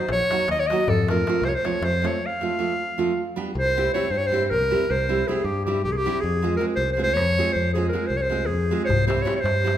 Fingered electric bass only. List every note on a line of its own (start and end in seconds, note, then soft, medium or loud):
0.09 0.22 A#1 medium
0.48 0.72 D#2 medium
0.88 1.21 F2 loud
1.42 1.55 C2 medium
1.82 2.05 F2 loud
3.55 3.88 C2 loud
4.10 4.53 G2 medium
4.51 4.74 C2 medium
4.90 5.23 C2 loud
5.44 5.85 G2 medium
5.84 6.07 C2 medium
6.23 6.56 F2 medium
6.77 7.17 C2 medium
7.17 7.40 F2 medium
7.56 7.89 F2 medium
8.10 8.49 C2 medium
8.49 8.73 F2 medium
8.89 9.22 C2 medium
9.44 9.78 G2 medium